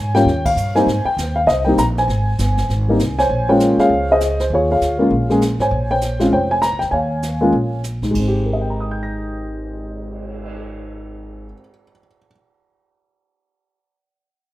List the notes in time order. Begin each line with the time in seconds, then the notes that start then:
Already playing: G#2 C#5 G#5
0.14 G3 A#3 C#4 F4 C#5 G5, snare
0.25 D#2, brush sweep, snare
0.45 F5, kick, ride
0.56 G2, hi-hat pedal
0.75 G3 A#3 C4 D#4 C5 G#5, snare
0.86 G#2, brush sweep, snare
1.05 G5, muted upright bass stroke
1.17 D#2, snare, hi-hat pedal
1.36 F5
1.47 C2 C5 D#5, brush sweep, snare
1.65 G3 A#3 C4 D#4 G5
1.77 A#1 A#5, snare, hi-hat pedal
1.97 C5 G#5, snare
2.08 G#1, brush sweep, snare
2.38 G1, snare, hi-hat pedal
2.57 snare
2.69 G#1, brush sweep, snare
2.88 G3 A#3 C4 D#4
2.99 C2, snare, hi-hat pedal
3.19 C5 C#5 G#5, snare
3.29 A#1, brush sweep
3.49 G#3 A#3 C#4 F4 C5 C#5 G5
3.60 snare, hi-hat pedal
3.77 G#4 C#5 F5, muted upright bass stroke, snare
3.90 C#2, brush sweep
4.11 G#4 C5 D#5
4.20 snare, hi-hat pedal
4.39 C5, snare
4.50 D#2 F4 G#4, brush sweep
4.55 C#5
4.71 G#4 C#5 F5
4.81 D2, snare, hi-hat pedal
4.99 G#3 A#3 C#4 F4
5.11 A#1, brush sweep
5.30 G#3 A#3 C#4 G#4, snare
5.41 snare, hi-hat pedal
5.59 G#1 C5 C#5 G#5, snare
5.71 A#1, brush sweep
5.91 C5 C#5 G5
6.01 snare, hi-hat pedal
6.20 G#3 C4 C#4 F4 F5, snare
6.32 F1 C5 C#5 G5, brush sweep
6.51 G#5
6.62 A#5, snare, hi-hat pedal
6.72 C2
6.79 D2 G5, snare
6.91 D#2 C#5 F5 G#5, brush sweep
7.22 snare, hi-hat pedal
7.41 G#3 A#3 C#4 F4
7.52 A#1, brush sweep
7.84 snare, hi-hat pedal
8.02 G#2, kick, snare
8.11 G#1 G#3, kick
8.15 crash
8.20 C4
8.28 G4
8.33 cymbal swell
8.45 A#4
8.53 D#5
8.61 G5
8.70 A#5
8.80 D#6
8.91 G6
9.03 A#6